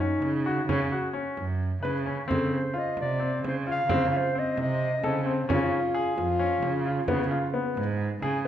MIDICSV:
0, 0, Header, 1, 6, 480
1, 0, Start_track
1, 0, Tempo, 456621
1, 730, Time_signature, 7, 3, 24, 8
1, 8910, End_track
2, 0, Start_track
2, 0, Title_t, "Clarinet"
2, 0, Program_c, 0, 71
2, 2420, Note_on_c, 0, 69, 67
2, 2680, Note_on_c, 0, 72, 74
2, 2696, Note_off_c, 0, 69, 0
2, 2928, Note_on_c, 0, 75, 78
2, 2944, Note_off_c, 0, 72, 0
2, 3149, Note_off_c, 0, 75, 0
2, 3167, Note_on_c, 0, 74, 88
2, 3596, Note_off_c, 0, 74, 0
2, 3655, Note_on_c, 0, 72, 79
2, 3753, Note_off_c, 0, 72, 0
2, 3904, Note_on_c, 0, 77, 97
2, 4387, Note_on_c, 0, 72, 85
2, 4403, Note_off_c, 0, 77, 0
2, 4619, Note_on_c, 0, 75, 84
2, 4635, Note_off_c, 0, 72, 0
2, 4834, Note_off_c, 0, 75, 0
2, 4860, Note_on_c, 0, 75, 87
2, 5512, Note_off_c, 0, 75, 0
2, 8910, End_track
3, 0, Start_track
3, 0, Title_t, "French horn"
3, 0, Program_c, 1, 60
3, 0, Note_on_c, 1, 63, 77
3, 722, Note_off_c, 1, 63, 0
3, 5283, Note_on_c, 1, 60, 77
3, 5732, Note_off_c, 1, 60, 0
3, 5772, Note_on_c, 1, 65, 92
3, 6448, Note_off_c, 1, 65, 0
3, 6481, Note_on_c, 1, 65, 94
3, 7403, Note_off_c, 1, 65, 0
3, 8910, End_track
4, 0, Start_track
4, 0, Title_t, "Grand piano"
4, 0, Program_c, 2, 0
4, 2, Note_on_c, 2, 61, 68
4, 305, Note_off_c, 2, 61, 0
4, 483, Note_on_c, 2, 66, 70
4, 636, Note_off_c, 2, 66, 0
4, 725, Note_on_c, 2, 61, 80
4, 877, Note_off_c, 2, 61, 0
4, 968, Note_on_c, 2, 66, 65
4, 1119, Note_off_c, 2, 66, 0
4, 1192, Note_on_c, 2, 61, 66
4, 1498, Note_off_c, 2, 61, 0
4, 1919, Note_on_c, 2, 71, 64
4, 2073, Note_off_c, 2, 71, 0
4, 2163, Note_on_c, 2, 61, 60
4, 2316, Note_off_c, 2, 61, 0
4, 2393, Note_on_c, 2, 60, 84
4, 2699, Note_off_c, 2, 60, 0
4, 2877, Note_on_c, 2, 65, 66
4, 3182, Note_off_c, 2, 65, 0
4, 3361, Note_on_c, 2, 60, 66
4, 3664, Note_off_c, 2, 60, 0
4, 3856, Note_on_c, 2, 65, 68
4, 4004, Note_off_c, 2, 65, 0
4, 4094, Note_on_c, 2, 60, 87
4, 4243, Note_off_c, 2, 60, 0
4, 4330, Note_on_c, 2, 65, 74
4, 4480, Note_off_c, 2, 65, 0
4, 4575, Note_on_c, 2, 60, 61
4, 4874, Note_off_c, 2, 60, 0
4, 5296, Note_on_c, 2, 69, 71
4, 5444, Note_off_c, 2, 69, 0
4, 5529, Note_on_c, 2, 60, 64
4, 5680, Note_off_c, 2, 60, 0
4, 5769, Note_on_c, 2, 61, 79
4, 6070, Note_off_c, 2, 61, 0
4, 6249, Note_on_c, 2, 68, 70
4, 6550, Note_off_c, 2, 68, 0
4, 6722, Note_on_c, 2, 61, 72
4, 7025, Note_off_c, 2, 61, 0
4, 7208, Note_on_c, 2, 65, 68
4, 7359, Note_off_c, 2, 65, 0
4, 7445, Note_on_c, 2, 59, 77
4, 7597, Note_off_c, 2, 59, 0
4, 7682, Note_on_c, 2, 65, 70
4, 7835, Note_off_c, 2, 65, 0
4, 7922, Note_on_c, 2, 59, 66
4, 8226, Note_off_c, 2, 59, 0
4, 8645, Note_on_c, 2, 68, 74
4, 8797, Note_off_c, 2, 68, 0
4, 8910, End_track
5, 0, Start_track
5, 0, Title_t, "Cello"
5, 0, Program_c, 3, 42
5, 0, Note_on_c, 3, 42, 82
5, 199, Note_off_c, 3, 42, 0
5, 229, Note_on_c, 3, 49, 76
5, 677, Note_off_c, 3, 49, 0
5, 710, Note_on_c, 3, 49, 90
5, 936, Note_off_c, 3, 49, 0
5, 1448, Note_on_c, 3, 42, 78
5, 1887, Note_off_c, 3, 42, 0
5, 1922, Note_on_c, 3, 49, 71
5, 2364, Note_off_c, 3, 49, 0
5, 2407, Note_on_c, 3, 49, 80
5, 2625, Note_off_c, 3, 49, 0
5, 3129, Note_on_c, 3, 48, 76
5, 3567, Note_off_c, 3, 48, 0
5, 3603, Note_on_c, 3, 49, 71
5, 4044, Note_off_c, 3, 49, 0
5, 4076, Note_on_c, 3, 49, 82
5, 4299, Note_off_c, 3, 49, 0
5, 4798, Note_on_c, 3, 48, 85
5, 5241, Note_off_c, 3, 48, 0
5, 5290, Note_on_c, 3, 49, 74
5, 5728, Note_off_c, 3, 49, 0
5, 5761, Note_on_c, 3, 49, 86
5, 5981, Note_off_c, 3, 49, 0
5, 6476, Note_on_c, 3, 41, 81
5, 6920, Note_off_c, 3, 41, 0
5, 6954, Note_on_c, 3, 49, 77
5, 7399, Note_off_c, 3, 49, 0
5, 7443, Note_on_c, 3, 49, 89
5, 7663, Note_off_c, 3, 49, 0
5, 8160, Note_on_c, 3, 44, 89
5, 8603, Note_off_c, 3, 44, 0
5, 8653, Note_on_c, 3, 49, 71
5, 8910, Note_off_c, 3, 49, 0
5, 8910, End_track
6, 0, Start_track
6, 0, Title_t, "Frame drum"
6, 231, Note_on_c, 9, 64, 47
6, 336, Note_off_c, 9, 64, 0
6, 725, Note_on_c, 9, 64, 60
6, 831, Note_off_c, 9, 64, 0
6, 1203, Note_on_c, 9, 64, 16
6, 1308, Note_off_c, 9, 64, 0
6, 1443, Note_on_c, 9, 64, 37
6, 1549, Note_off_c, 9, 64, 0
6, 1698, Note_on_c, 9, 64, 17
6, 1803, Note_off_c, 9, 64, 0
6, 1944, Note_on_c, 9, 64, 45
6, 2049, Note_off_c, 9, 64, 0
6, 2181, Note_on_c, 9, 64, 17
6, 2286, Note_off_c, 9, 64, 0
6, 2423, Note_on_c, 9, 64, 59
6, 2528, Note_off_c, 9, 64, 0
6, 3122, Note_on_c, 9, 64, 44
6, 3227, Note_off_c, 9, 64, 0
6, 3621, Note_on_c, 9, 64, 48
6, 3727, Note_off_c, 9, 64, 0
6, 4093, Note_on_c, 9, 64, 67
6, 4199, Note_off_c, 9, 64, 0
6, 4809, Note_on_c, 9, 64, 46
6, 4914, Note_off_c, 9, 64, 0
6, 5293, Note_on_c, 9, 64, 51
6, 5398, Note_off_c, 9, 64, 0
6, 5780, Note_on_c, 9, 64, 72
6, 5885, Note_off_c, 9, 64, 0
6, 6495, Note_on_c, 9, 64, 48
6, 6600, Note_off_c, 9, 64, 0
6, 6966, Note_on_c, 9, 64, 49
6, 7071, Note_off_c, 9, 64, 0
6, 7441, Note_on_c, 9, 64, 63
6, 7546, Note_off_c, 9, 64, 0
6, 8170, Note_on_c, 9, 64, 44
6, 8275, Note_off_c, 9, 64, 0
6, 8646, Note_on_c, 9, 64, 50
6, 8751, Note_off_c, 9, 64, 0
6, 8910, End_track
0, 0, End_of_file